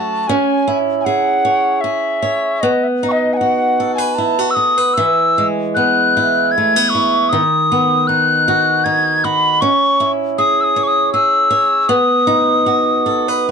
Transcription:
Already playing: F#3 A3 C#4 F#4 A5
0.28 C#4 G#5
0.68 E4
1.01 G#5
1.05 G#4 F#5
1.45 C#5
1.81 G#4 E5
2.22 C#5
2.61 B3 D#5
2.84 E5
3.03 D#4
3.09 D#5 C#6
3.33 F#5 G#5
3.41 F#4
3.80 A4
3.95 B4 G#5
4.15 E4 A5
4.39 F#4
4.50 E6
4.55 A4 D#6
4.78 B4
4.94 E3 E6
5.38 G#3
5.75 B3 F#6
6.17 E4
6.51 G#6
6.58 A3
6.76 B3
6.89 C#6
6.95 E4
7.29 D#3 D#6
7.72 B3
8.07 D#4 F#6
8.48 F#4
8.84 D#4 G#6
9.24 F#4 B5
9.61 C#4 C#6
10.00 E4
10.38 G#4 D#6
10.61 D#6 E6
10.76 C#5
10.84 C#6
10.88 D#6
11.13 G#4 E6
11.51 C#5
11.88 B3 D#6
12.27 D#4
12.66 F#4
13.06 A4
13.28 B4

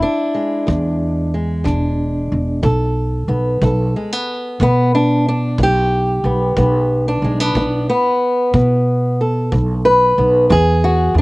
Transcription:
Already playing: E2 G#3 E4
0.02 D4
0.34 G#3
0.67 E2, kick
1.34 G#3
1.64 E1 E2 D4, kick
2.32 E1
2.63 B1 B2 A4, kick
3.28 B1 B3
3.62 B1 B2 A4, kick
3.96 G#3
4.12 B3
4.60 B2 B3, kick
4.95 D4
5.28 D4
5.58 B1 B2, kick
5.63 G4
6.24 B1 B3
6.56 B1 B2 B3, kick
7.08 D4
7.22 B1 G#3
7.40 B3 D4
7.55 B1 B2, kick
7.89 B3
8.54 B2, kick
9.21 A4
9.52 B1 B2, kick
9.85 B4
10.18 B1 B3
10.50 E2 G#4, kick
10.84 F#4
11.14 E2 D4

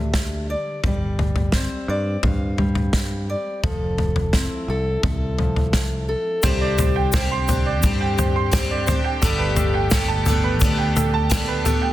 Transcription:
Already playing: D2 D3 G3 G4 B4 E5
0.14 kick, snare
0.50 D5
0.84 G1 G3 D5, kick, floor tom
1.19 floor tom
1.36 floor tom
1.52 C4 C5, kick, snare
1.88 G2 D5
2.23 G2 F5, kick, floor tom
2.58 G3, floor tom
2.75 floor tom
2.93 kick, snare
3.30 D5
3.63 F1 F3 A4, kick, floor tom
3.98 floor tom
4.16 floor tom
4.33 C4 E4, kick, snare
4.68 C2 A4
5.03 C2 A4, kick, floor tom
5.38 F3, floor tom
5.56 floor tom
5.73 kick, snare
6.09 A4
6.42 C2 C3 D3 G3 C4 D4 G4 C5, kick, floor tom, shaker
6.61 D5
6.78 C5, floor tom, shaker
6.96 G5
7.12 G3 C4 D4 C5, kick, snare, floor tom, shaker
7.17 G4
7.31 C6
7.48 C4 D4 G4 C5, floor tom, shaker
7.66 D5
7.83 G2 G3 C4 D4 G4, kick, floor tom, shaker
8.01 G5
8.18 C5, floor tom, shaker
8.36 C6
8.52 G3 C4 D4 G4 C5, kick, snare, floor tom, shaker
8.71 D5
8.87 D4 G4 C5, floor tom, shaker
8.91 C4
9.04 G5
9.21 G1 G2 D3 A3 B3 D4 A4, kick, floor tom, shaker
9.25 G4
9.39 B4
9.56 A4, floor tom, shaker
9.74 G5
9.91 A3 B3 D4 A4, kick, snare, floor tom, shaker
9.95 G4
10.08 A5
10.26 B3 D4 G4 A4, floor tom, shaker
10.30 A3
10.44 B4
10.60 D2 A3 B3 D4, kick, floor tom, shaker
10.65 G4
10.78 G5
10.96 A4, floor tom, shaker
11.14 A5
11.30 A3 B3 D4 G4 A4, kick, snare, floor tom, shaker
11.48 B4
11.64 A3 B3 D4 G4 A4, floor tom, shaker
11.82 G5

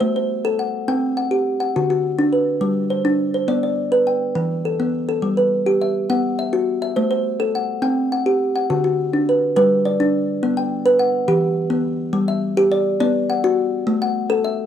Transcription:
Already playing: E5
0.00 A3 C5
0.16 C5
0.45 A4
0.59 F#5
0.88 C4 G5
1.17 F#5
1.31 G4
1.60 F#5
1.76 D3 F#4
1.90 F#4
2.19 D4
2.33 B4
2.61 G3
2.90 C5
3.05 D4
3.34 C5
3.48 B3 D5
3.63 D5
3.92 B4
4.07 G5
4.35 E3
4.65 A4
4.80 B3
5.09 A4
5.22 G3
5.37 B4
5.66 G4
5.81 E5
6.10 B3 F#5
6.39 E5
6.53 F#4
6.82 E5
6.96 A3 C5
7.11 C5
7.40 A4
7.55 F#5
7.82 C4 G5
8.12 F#5
8.26 G4
8.56 F#5
8.70 D3 F#4
8.84 F#4
9.13 D4
9.29 B4
9.56 G3 B4
9.85 D5
10.00 D4
10.43 B3
10.57 G5
10.86 B4
10.99 F#5
11.28 E3 G4
11.70 B3
12.13 G3
12.28 E5
12.57 G4
12.72 D5
13.00 B3 D5
13.30 F#5
13.44 F#4
13.87 A3
14.02 F#5
14.30 A4
14.45 E5

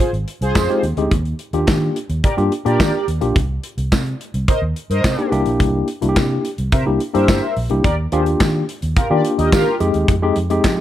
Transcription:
0.00 F4 G#4 C5
0.13 G#1, closed hi-hat
0.28 closed hi-hat
0.41 C2 F4 G#4 C5, closed hi-hat
0.55 F2, kick, snare, clap, tambourine
0.69 G#3 C4 D#4 G4, closed hi-hat
0.83 D#2, closed hi-hat
0.97 D2 G#3 C4 D#4 G4, closed hi-hat
1.11 D#2, kick, closed hi-hat
1.25 closed hi-hat
1.39 closed hi-hat
1.53 D#2 A#3 D4 F4 G4, closed hi-hat
1.67 D#3, kick, snare, clap, tambourine
1.96 closed hi-hat
2.09 D#2, closed hi-hat
2.23 G4 A#4 D5, kick, closed hi-hat
2.37 G2 A#3 D4 F4 G4, closed hi-hat
2.52 closed hi-hat
2.65 A#2 A#3 D4 F4 G4 A#4 D5, closed hi-hat
2.80 D#3, kick, snare, clap, tambourine
3.08 D#2, closed hi-hat
3.21 A#1 A#3 D4 F4 G4, closed hi-hat
3.36 C2, kick, closed hi-hat
3.64 closed hi-hat
3.77 C2, closed hi-hat
3.92 C3, kick, snare, clap, tambourine
4.06 closed hi-hat
4.21 closed hi-hat
4.34 C2, closed hi-hat
4.48 A#4 C5 D#5, kick, closed hi-hat
4.62 D#2
4.76 closed hi-hat
4.90 G2 A#4 C5 D#5, closed hi-hat
5.04 C3, kick, snare, clap, tambourine
5.18 A#3 D4 D#4 G4, closed hi-hat
5.31 C2 A#3 D4 E4 G4, closed hi-hat
5.46 A#1, closed hi-hat
5.60 C2, kick, closed hi-hat
5.88 closed hi-hat
6.01 C2 A#3 D4 E4 F#4, closed hi-hat
6.09 G4
6.16 C3, kick, snare, clap, tambourine
6.45 closed hi-hat
6.58 C2, closed hi-hat
6.72 C3 A#4 C5 E5, kick, closed hi-hat
6.86 C2 A#3 D4 E4 G4
7.00 closed hi-hat
7.14 G2 A#3 D4 E4 G4 A#4 C5 E5, closed hi-hat
7.28 G1, kick, snare, clap, tambourine
7.57 A#1, open hi-hat
7.70 C2 A#3 D4 E4 G4, closed hi-hat
7.83 D#2 G4 A#4 D5, kick, closed hi-hat
8.12 D#2 A#3 D4 F4 G4 G#4 C5, closed hi-hat
8.26 closed hi-hat
8.40 D#3, kick, snare, clap, tambourine
8.69 closed hi-hat
8.82 D#2, closed hi-hat
8.96 F4 G4 A#4, kick, closed hi-hat
9.10 D#3 A#3 D4 F4 G4 A#4 D5
9.25 closed hi-hat
9.38 D#2 G4 A#4 D#5, closed hi-hat
9.52 D#3 F4 G4 A#4, kick, snare, clap, tambourine
9.80 F2 G#3 C4 D#4 G4, closed hi-hat
9.94 D#2, closed hi-hat
10.08 F2, kick, closed hi-hat
10.22 G#3 C4 D#4 G4
10.36 F2, closed hi-hat
10.50 G#3 C4 D#4 G4, closed hi-hat
10.64 F3, kick, snare, clap, tambourine

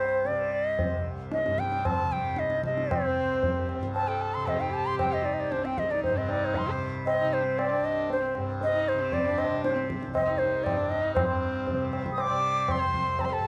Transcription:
Already playing: C2 G2 C3 C5
0.25 D5, tabla tin
0.30 C3
0.52 D5
0.66 D#5
0.79 tabla tin, tabla ge
0.89 C2
1.32 D#5, tabla te
1.46 G2, tabla te
1.58 G5, tabla ke
1.72 tabla te
1.85 A5, tabla na, tabla ge
2.04 C3
2.11 G5, tabla ge
2.36 D#5, tabla te
2.50 tabla te
2.63 C3 D#5, tabla ke
2.77 tabla te
2.91 C5, tabla na, tabla ge
3.02 C4
3.21 C2
3.43 tabla tin, tabla ge
3.69 tabla na
3.79 G2, tabla ke
3.95 A5, tabla na
4.07 A4 G5
4.21 A5
4.34 C3 C6
4.47 D#5, tabla na, tabla ge
4.59 D#4 G5
4.71 G4 A5
4.86 C6
4.93 C3
4.99 G5, tabla na, tabla ge
5.09 G4
5.13 D#5
5.23 D#4 D5
5.34 D#5
5.40 D5
5.51 C2 D4 C5, tabla te
5.64 C4 G5, tabla te
5.78 D#5, tabla ke
5.90 D#4 D5, tabla te
6.04 C5, tabla tin, tabla ge
6.10 G2
6.16 C4 D#5
6.27 D#4 D5 D#5, tabla na
6.45 C5
6.54 C6, tabla tin, tabla ge
6.66 C3 C5
7.06 D#5, tabla na
7.21 C3 D#4
7.33 C5
7.40 D4
7.45 C4
7.58 D5, tabla na
7.70 D4
7.79 C2
7.85 D#5
8.10 C5, tabla tin
8.21 C4
8.35 G2, tabla na
8.61 D#5, tabla tin
8.74 D#4
8.88 C5
8.94 C3
9.00 C4
9.12 D5, tabla tin, tabla ge
9.26 D4
9.38 D#5, tabla na
9.51 C3
9.64 C5, tabla te
9.75 C4, tabla te
9.90 tabla ke
10.03 C2, tabla te
10.15 D#5, tabla na, tabla ge
10.26 D#4
10.38 C5, tabla te
10.64 G2 D5, tabla na, tabla ge
10.77 D4
10.89 D#5, tabla te
11.02 D#4
11.14 G2 C5, tabla na, tabla ge
11.29 C4
11.67 tabla tin, tabla ge
11.73 C3
11.93 tabla na
12.06 tabla ke
12.12 D#6
12.18 D6, tabla na
12.29 C3 D5
12.68 C6, tabla na, tabla ge
12.80 C5
12.85 C2
12.94 tabla ge
13.19 A5, tabla na, tabla ge
13.25 C6
13.31 A4 A5
13.40 G2 A4

